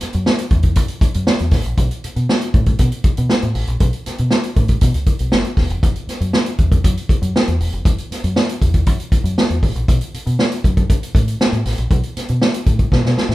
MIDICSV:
0, 0, Header, 1, 4, 480
1, 0, Start_track
1, 0, Tempo, 505902
1, 1688, Time_signature, 4, 2, 24, 8
1, 12665, End_track
2, 0, Start_track
2, 0, Title_t, "Fingered electric bass"
2, 0, Program_c, 0, 33
2, 137, Note_on_c, 0, 42, 109
2, 229, Note_off_c, 0, 42, 0
2, 484, Note_on_c, 0, 40, 95
2, 727, Note_off_c, 0, 40, 0
2, 727, Note_on_c, 0, 42, 117
2, 823, Note_off_c, 0, 42, 0
2, 1094, Note_on_c, 0, 42, 104
2, 1187, Note_off_c, 0, 42, 0
2, 1331, Note_on_c, 0, 40, 77
2, 1426, Note_off_c, 0, 40, 0
2, 1442, Note_on_c, 0, 33, 100
2, 1540, Note_off_c, 0, 33, 0
2, 1570, Note_on_c, 0, 34, 77
2, 1665, Note_off_c, 0, 34, 0
2, 1688, Note_on_c, 0, 35, 113
2, 1784, Note_off_c, 0, 35, 0
2, 2052, Note_on_c, 0, 47, 97
2, 2146, Note_off_c, 0, 47, 0
2, 2410, Note_on_c, 0, 45, 87
2, 2601, Note_off_c, 0, 45, 0
2, 2652, Note_on_c, 0, 47, 117
2, 2747, Note_off_c, 0, 47, 0
2, 3018, Note_on_c, 0, 47, 110
2, 3110, Note_off_c, 0, 47, 0
2, 3253, Note_on_c, 0, 45, 88
2, 3347, Note_off_c, 0, 45, 0
2, 3371, Note_on_c, 0, 33, 100
2, 3466, Note_off_c, 0, 33, 0
2, 3489, Note_on_c, 0, 34, 90
2, 3585, Note_off_c, 0, 34, 0
2, 3612, Note_on_c, 0, 35, 118
2, 3707, Note_off_c, 0, 35, 0
2, 3978, Note_on_c, 0, 47, 102
2, 4070, Note_off_c, 0, 47, 0
2, 4333, Note_on_c, 0, 45, 91
2, 4524, Note_off_c, 0, 45, 0
2, 4569, Note_on_c, 0, 47, 112
2, 4665, Note_off_c, 0, 47, 0
2, 4696, Note_on_c, 0, 37, 95
2, 4789, Note_off_c, 0, 37, 0
2, 4936, Note_on_c, 0, 35, 93
2, 5029, Note_off_c, 0, 35, 0
2, 5056, Note_on_c, 0, 30, 95
2, 5149, Note_off_c, 0, 30, 0
2, 5284, Note_on_c, 0, 28, 81
2, 5382, Note_off_c, 0, 28, 0
2, 5411, Note_on_c, 0, 29, 79
2, 5506, Note_off_c, 0, 29, 0
2, 5532, Note_on_c, 0, 30, 110
2, 5626, Note_off_c, 0, 30, 0
2, 5888, Note_on_c, 0, 42, 101
2, 5984, Note_off_c, 0, 42, 0
2, 6251, Note_on_c, 0, 40, 87
2, 6442, Note_off_c, 0, 40, 0
2, 6494, Note_on_c, 0, 42, 117
2, 6588, Note_off_c, 0, 42, 0
2, 6849, Note_on_c, 0, 42, 111
2, 6945, Note_off_c, 0, 42, 0
2, 7097, Note_on_c, 0, 40, 88
2, 7189, Note_off_c, 0, 40, 0
2, 7213, Note_on_c, 0, 28, 94
2, 7307, Note_off_c, 0, 28, 0
2, 7335, Note_on_c, 0, 29, 85
2, 7429, Note_off_c, 0, 29, 0
2, 7451, Note_on_c, 0, 30, 110
2, 7546, Note_off_c, 0, 30, 0
2, 7817, Note_on_c, 0, 42, 101
2, 7910, Note_off_c, 0, 42, 0
2, 8178, Note_on_c, 0, 40, 94
2, 8416, Note_off_c, 0, 40, 0
2, 8416, Note_on_c, 0, 42, 120
2, 8509, Note_off_c, 0, 42, 0
2, 8764, Note_on_c, 0, 42, 101
2, 8862, Note_off_c, 0, 42, 0
2, 9011, Note_on_c, 0, 40, 75
2, 9106, Note_off_c, 0, 40, 0
2, 9136, Note_on_c, 0, 33, 96
2, 9229, Note_off_c, 0, 33, 0
2, 9253, Note_on_c, 0, 34, 87
2, 9347, Note_off_c, 0, 34, 0
2, 9377, Note_on_c, 0, 35, 114
2, 9470, Note_off_c, 0, 35, 0
2, 9739, Note_on_c, 0, 47, 108
2, 9831, Note_off_c, 0, 47, 0
2, 10100, Note_on_c, 0, 42, 96
2, 10287, Note_off_c, 0, 42, 0
2, 10578, Note_on_c, 0, 45, 90
2, 10766, Note_off_c, 0, 45, 0
2, 10934, Note_on_c, 0, 45, 82
2, 11028, Note_off_c, 0, 45, 0
2, 11059, Note_on_c, 0, 33, 92
2, 11151, Note_off_c, 0, 33, 0
2, 11182, Note_on_c, 0, 34, 85
2, 11273, Note_off_c, 0, 34, 0
2, 11300, Note_on_c, 0, 35, 127
2, 11392, Note_off_c, 0, 35, 0
2, 11666, Note_on_c, 0, 47, 101
2, 11755, Note_off_c, 0, 47, 0
2, 12015, Note_on_c, 0, 45, 78
2, 12205, Note_off_c, 0, 45, 0
2, 12260, Note_on_c, 0, 47, 111
2, 12352, Note_off_c, 0, 47, 0
2, 12378, Note_on_c, 0, 47, 103
2, 12471, Note_off_c, 0, 47, 0
2, 12607, Note_on_c, 0, 45, 103
2, 12665, Note_off_c, 0, 45, 0
2, 12665, End_track
3, 0, Start_track
3, 0, Title_t, "Muted fingered electric bass strokes"
3, 21, Note_on_c, 9, 29, 53
3, 116, Note_off_c, 9, 29, 0
3, 962, Note_on_c, 9, 29, 48
3, 1056, Note_off_c, 9, 29, 0
3, 1939, Note_on_c, 9, 29, 52
3, 2034, Note_off_c, 9, 29, 0
3, 2886, Note_on_c, 9, 29, 50
3, 2981, Note_off_c, 9, 29, 0
3, 3861, Note_on_c, 9, 29, 46
3, 3956, Note_off_c, 9, 29, 0
3, 5762, Note_on_c, 9, 29, 48
3, 5857, Note_off_c, 9, 29, 0
3, 6733, Note_on_c, 9, 29, 53
3, 6828, Note_off_c, 9, 29, 0
3, 7694, Note_on_c, 9, 29, 46
3, 7789, Note_off_c, 9, 29, 0
3, 8654, Note_on_c, 9, 29, 47
3, 8749, Note_off_c, 9, 29, 0
3, 9623, Note_on_c, 9, 29, 49
3, 9718, Note_off_c, 9, 29, 0
3, 11545, Note_on_c, 9, 29, 47
3, 11640, Note_off_c, 9, 29, 0
3, 12665, End_track
4, 0, Start_track
4, 0, Title_t, "Drums"
4, 6, Note_on_c, 9, 42, 77
4, 7, Note_on_c, 9, 38, 35
4, 101, Note_off_c, 9, 42, 0
4, 102, Note_off_c, 9, 38, 0
4, 122, Note_on_c, 9, 42, 57
4, 217, Note_off_c, 9, 42, 0
4, 249, Note_on_c, 9, 38, 117
4, 343, Note_off_c, 9, 38, 0
4, 365, Note_on_c, 9, 42, 68
4, 460, Note_off_c, 9, 42, 0
4, 479, Note_on_c, 9, 42, 57
4, 483, Note_on_c, 9, 36, 94
4, 574, Note_off_c, 9, 42, 0
4, 578, Note_off_c, 9, 36, 0
4, 595, Note_on_c, 9, 42, 49
4, 603, Note_on_c, 9, 36, 87
4, 690, Note_off_c, 9, 42, 0
4, 698, Note_off_c, 9, 36, 0
4, 717, Note_on_c, 9, 42, 91
4, 725, Note_on_c, 9, 36, 100
4, 812, Note_off_c, 9, 42, 0
4, 820, Note_off_c, 9, 36, 0
4, 836, Note_on_c, 9, 42, 60
4, 931, Note_off_c, 9, 42, 0
4, 961, Note_on_c, 9, 36, 112
4, 964, Note_on_c, 9, 42, 77
4, 1056, Note_off_c, 9, 36, 0
4, 1059, Note_off_c, 9, 42, 0
4, 1084, Note_on_c, 9, 42, 53
4, 1179, Note_off_c, 9, 42, 0
4, 1203, Note_on_c, 9, 38, 118
4, 1298, Note_off_c, 9, 38, 0
4, 1319, Note_on_c, 9, 42, 46
4, 1414, Note_off_c, 9, 42, 0
4, 1434, Note_on_c, 9, 46, 83
4, 1439, Note_on_c, 9, 36, 95
4, 1441, Note_on_c, 9, 38, 36
4, 1529, Note_off_c, 9, 46, 0
4, 1534, Note_off_c, 9, 36, 0
4, 1536, Note_off_c, 9, 38, 0
4, 1555, Note_on_c, 9, 42, 48
4, 1650, Note_off_c, 9, 42, 0
4, 1684, Note_on_c, 9, 42, 76
4, 1685, Note_on_c, 9, 36, 99
4, 1778, Note_off_c, 9, 42, 0
4, 1780, Note_off_c, 9, 36, 0
4, 1810, Note_on_c, 9, 42, 52
4, 1905, Note_off_c, 9, 42, 0
4, 1935, Note_on_c, 9, 42, 79
4, 2030, Note_off_c, 9, 42, 0
4, 2052, Note_on_c, 9, 42, 51
4, 2147, Note_off_c, 9, 42, 0
4, 2176, Note_on_c, 9, 38, 106
4, 2271, Note_off_c, 9, 38, 0
4, 2290, Note_on_c, 9, 42, 65
4, 2384, Note_off_c, 9, 42, 0
4, 2409, Note_on_c, 9, 42, 49
4, 2410, Note_on_c, 9, 36, 105
4, 2504, Note_off_c, 9, 42, 0
4, 2505, Note_off_c, 9, 36, 0
4, 2525, Note_on_c, 9, 42, 50
4, 2530, Note_on_c, 9, 36, 92
4, 2620, Note_off_c, 9, 42, 0
4, 2625, Note_off_c, 9, 36, 0
4, 2644, Note_on_c, 9, 42, 98
4, 2650, Note_on_c, 9, 36, 95
4, 2739, Note_off_c, 9, 42, 0
4, 2745, Note_off_c, 9, 36, 0
4, 2768, Note_on_c, 9, 42, 55
4, 2863, Note_off_c, 9, 42, 0
4, 2883, Note_on_c, 9, 42, 70
4, 2886, Note_on_c, 9, 36, 107
4, 2978, Note_off_c, 9, 42, 0
4, 2981, Note_off_c, 9, 36, 0
4, 3008, Note_on_c, 9, 42, 61
4, 3103, Note_off_c, 9, 42, 0
4, 3127, Note_on_c, 9, 38, 116
4, 3221, Note_off_c, 9, 38, 0
4, 3247, Note_on_c, 9, 42, 47
4, 3342, Note_off_c, 9, 42, 0
4, 3366, Note_on_c, 9, 46, 92
4, 3461, Note_off_c, 9, 46, 0
4, 3485, Note_on_c, 9, 42, 45
4, 3580, Note_off_c, 9, 42, 0
4, 3607, Note_on_c, 9, 42, 79
4, 3610, Note_on_c, 9, 36, 100
4, 3702, Note_off_c, 9, 42, 0
4, 3705, Note_off_c, 9, 36, 0
4, 3727, Note_on_c, 9, 42, 49
4, 3822, Note_off_c, 9, 42, 0
4, 3853, Note_on_c, 9, 42, 75
4, 3854, Note_on_c, 9, 38, 36
4, 3947, Note_off_c, 9, 42, 0
4, 3949, Note_off_c, 9, 38, 0
4, 3968, Note_on_c, 9, 42, 50
4, 4063, Note_off_c, 9, 42, 0
4, 4085, Note_on_c, 9, 38, 102
4, 4180, Note_off_c, 9, 38, 0
4, 4207, Note_on_c, 9, 42, 60
4, 4302, Note_off_c, 9, 42, 0
4, 4329, Note_on_c, 9, 42, 62
4, 4331, Note_on_c, 9, 36, 95
4, 4424, Note_off_c, 9, 42, 0
4, 4426, Note_off_c, 9, 36, 0
4, 4442, Note_on_c, 9, 42, 51
4, 4451, Note_on_c, 9, 36, 93
4, 4537, Note_off_c, 9, 42, 0
4, 4546, Note_off_c, 9, 36, 0
4, 4564, Note_on_c, 9, 42, 93
4, 4570, Note_on_c, 9, 36, 105
4, 4659, Note_off_c, 9, 42, 0
4, 4665, Note_off_c, 9, 36, 0
4, 4688, Note_on_c, 9, 42, 61
4, 4783, Note_off_c, 9, 42, 0
4, 4804, Note_on_c, 9, 42, 68
4, 4807, Note_on_c, 9, 36, 94
4, 4899, Note_off_c, 9, 42, 0
4, 4902, Note_off_c, 9, 36, 0
4, 4924, Note_on_c, 9, 42, 56
4, 5019, Note_off_c, 9, 42, 0
4, 5046, Note_on_c, 9, 38, 123
4, 5141, Note_off_c, 9, 38, 0
4, 5165, Note_on_c, 9, 42, 43
4, 5259, Note_off_c, 9, 42, 0
4, 5282, Note_on_c, 9, 46, 83
4, 5285, Note_on_c, 9, 36, 90
4, 5290, Note_on_c, 9, 38, 40
4, 5377, Note_off_c, 9, 46, 0
4, 5380, Note_off_c, 9, 36, 0
4, 5385, Note_off_c, 9, 38, 0
4, 5410, Note_on_c, 9, 42, 47
4, 5505, Note_off_c, 9, 42, 0
4, 5531, Note_on_c, 9, 36, 108
4, 5533, Note_on_c, 9, 42, 83
4, 5626, Note_off_c, 9, 36, 0
4, 5628, Note_off_c, 9, 42, 0
4, 5651, Note_on_c, 9, 42, 48
4, 5746, Note_off_c, 9, 42, 0
4, 5776, Note_on_c, 9, 42, 77
4, 5777, Note_on_c, 9, 38, 36
4, 5871, Note_off_c, 9, 42, 0
4, 5872, Note_off_c, 9, 38, 0
4, 5896, Note_on_c, 9, 42, 55
4, 5990, Note_off_c, 9, 42, 0
4, 6010, Note_on_c, 9, 38, 113
4, 6104, Note_off_c, 9, 38, 0
4, 6129, Note_on_c, 9, 42, 56
4, 6223, Note_off_c, 9, 42, 0
4, 6248, Note_on_c, 9, 42, 51
4, 6251, Note_on_c, 9, 36, 88
4, 6343, Note_off_c, 9, 42, 0
4, 6345, Note_off_c, 9, 36, 0
4, 6373, Note_on_c, 9, 36, 97
4, 6374, Note_on_c, 9, 42, 54
4, 6467, Note_off_c, 9, 36, 0
4, 6469, Note_off_c, 9, 42, 0
4, 6492, Note_on_c, 9, 42, 92
4, 6493, Note_on_c, 9, 36, 98
4, 6587, Note_off_c, 9, 42, 0
4, 6588, Note_off_c, 9, 36, 0
4, 6617, Note_on_c, 9, 42, 59
4, 6712, Note_off_c, 9, 42, 0
4, 6730, Note_on_c, 9, 36, 107
4, 6737, Note_on_c, 9, 42, 74
4, 6825, Note_off_c, 9, 36, 0
4, 6831, Note_off_c, 9, 42, 0
4, 6855, Note_on_c, 9, 42, 60
4, 6950, Note_off_c, 9, 42, 0
4, 6981, Note_on_c, 9, 38, 115
4, 7076, Note_off_c, 9, 38, 0
4, 7094, Note_on_c, 9, 42, 47
4, 7189, Note_off_c, 9, 42, 0
4, 7215, Note_on_c, 9, 46, 82
4, 7310, Note_off_c, 9, 46, 0
4, 7331, Note_on_c, 9, 42, 43
4, 7426, Note_off_c, 9, 42, 0
4, 7451, Note_on_c, 9, 36, 112
4, 7453, Note_on_c, 9, 42, 83
4, 7546, Note_off_c, 9, 36, 0
4, 7548, Note_off_c, 9, 42, 0
4, 7574, Note_on_c, 9, 42, 49
4, 7669, Note_off_c, 9, 42, 0
4, 7703, Note_on_c, 9, 42, 81
4, 7705, Note_on_c, 9, 38, 40
4, 7798, Note_off_c, 9, 42, 0
4, 7799, Note_off_c, 9, 38, 0
4, 7817, Note_on_c, 9, 42, 60
4, 7911, Note_off_c, 9, 42, 0
4, 7934, Note_on_c, 9, 38, 105
4, 8029, Note_off_c, 9, 38, 0
4, 8056, Note_on_c, 9, 42, 62
4, 8151, Note_off_c, 9, 42, 0
4, 8175, Note_on_c, 9, 36, 92
4, 8177, Note_on_c, 9, 42, 62
4, 8270, Note_off_c, 9, 36, 0
4, 8272, Note_off_c, 9, 42, 0
4, 8290, Note_on_c, 9, 42, 53
4, 8294, Note_on_c, 9, 36, 89
4, 8385, Note_off_c, 9, 42, 0
4, 8389, Note_off_c, 9, 36, 0
4, 8411, Note_on_c, 9, 42, 92
4, 8416, Note_on_c, 9, 36, 100
4, 8506, Note_off_c, 9, 42, 0
4, 8511, Note_off_c, 9, 36, 0
4, 8536, Note_on_c, 9, 42, 50
4, 8631, Note_off_c, 9, 42, 0
4, 8652, Note_on_c, 9, 36, 106
4, 8654, Note_on_c, 9, 42, 73
4, 8747, Note_off_c, 9, 36, 0
4, 8749, Note_off_c, 9, 42, 0
4, 8779, Note_on_c, 9, 42, 58
4, 8874, Note_off_c, 9, 42, 0
4, 8899, Note_on_c, 9, 38, 127
4, 8994, Note_off_c, 9, 38, 0
4, 9017, Note_on_c, 9, 42, 42
4, 9112, Note_off_c, 9, 42, 0
4, 9135, Note_on_c, 9, 36, 94
4, 9139, Note_on_c, 9, 46, 77
4, 9230, Note_off_c, 9, 36, 0
4, 9234, Note_off_c, 9, 46, 0
4, 9261, Note_on_c, 9, 42, 47
4, 9356, Note_off_c, 9, 42, 0
4, 9378, Note_on_c, 9, 36, 108
4, 9380, Note_on_c, 9, 42, 80
4, 9473, Note_off_c, 9, 36, 0
4, 9475, Note_off_c, 9, 42, 0
4, 9497, Note_on_c, 9, 42, 53
4, 9591, Note_off_c, 9, 42, 0
4, 9624, Note_on_c, 9, 42, 70
4, 9719, Note_off_c, 9, 42, 0
4, 9742, Note_on_c, 9, 42, 52
4, 9837, Note_off_c, 9, 42, 0
4, 9859, Note_on_c, 9, 38, 96
4, 9954, Note_off_c, 9, 38, 0
4, 9978, Note_on_c, 9, 42, 65
4, 10073, Note_off_c, 9, 42, 0
4, 10099, Note_on_c, 9, 36, 89
4, 10101, Note_on_c, 9, 42, 60
4, 10194, Note_off_c, 9, 36, 0
4, 10196, Note_off_c, 9, 42, 0
4, 10219, Note_on_c, 9, 42, 49
4, 10220, Note_on_c, 9, 36, 92
4, 10314, Note_off_c, 9, 42, 0
4, 10315, Note_off_c, 9, 36, 0
4, 10339, Note_on_c, 9, 42, 87
4, 10340, Note_on_c, 9, 36, 99
4, 10434, Note_off_c, 9, 42, 0
4, 10435, Note_off_c, 9, 36, 0
4, 10465, Note_on_c, 9, 42, 57
4, 10559, Note_off_c, 9, 42, 0
4, 10577, Note_on_c, 9, 36, 109
4, 10585, Note_on_c, 9, 42, 78
4, 10672, Note_off_c, 9, 36, 0
4, 10680, Note_off_c, 9, 42, 0
4, 10700, Note_on_c, 9, 42, 58
4, 10795, Note_off_c, 9, 42, 0
4, 10824, Note_on_c, 9, 38, 120
4, 10919, Note_off_c, 9, 38, 0
4, 10939, Note_on_c, 9, 42, 42
4, 11034, Note_off_c, 9, 42, 0
4, 11058, Note_on_c, 9, 46, 85
4, 11066, Note_on_c, 9, 38, 37
4, 11153, Note_off_c, 9, 46, 0
4, 11160, Note_off_c, 9, 38, 0
4, 11175, Note_on_c, 9, 42, 52
4, 11270, Note_off_c, 9, 42, 0
4, 11297, Note_on_c, 9, 36, 109
4, 11299, Note_on_c, 9, 42, 72
4, 11392, Note_off_c, 9, 36, 0
4, 11394, Note_off_c, 9, 42, 0
4, 11417, Note_on_c, 9, 42, 51
4, 11512, Note_off_c, 9, 42, 0
4, 11543, Note_on_c, 9, 42, 77
4, 11545, Note_on_c, 9, 38, 36
4, 11638, Note_off_c, 9, 42, 0
4, 11640, Note_off_c, 9, 38, 0
4, 11656, Note_on_c, 9, 42, 53
4, 11751, Note_off_c, 9, 42, 0
4, 11780, Note_on_c, 9, 38, 105
4, 11875, Note_off_c, 9, 38, 0
4, 11899, Note_on_c, 9, 42, 66
4, 11994, Note_off_c, 9, 42, 0
4, 12015, Note_on_c, 9, 42, 58
4, 12017, Note_on_c, 9, 36, 88
4, 12110, Note_off_c, 9, 42, 0
4, 12112, Note_off_c, 9, 36, 0
4, 12135, Note_on_c, 9, 42, 48
4, 12137, Note_on_c, 9, 36, 79
4, 12230, Note_off_c, 9, 42, 0
4, 12232, Note_off_c, 9, 36, 0
4, 12257, Note_on_c, 9, 36, 93
4, 12262, Note_on_c, 9, 38, 65
4, 12351, Note_off_c, 9, 36, 0
4, 12357, Note_off_c, 9, 38, 0
4, 12387, Note_on_c, 9, 38, 59
4, 12482, Note_off_c, 9, 38, 0
4, 12503, Note_on_c, 9, 38, 80
4, 12598, Note_off_c, 9, 38, 0
4, 12625, Note_on_c, 9, 38, 78
4, 12665, Note_off_c, 9, 38, 0
4, 12665, End_track
0, 0, End_of_file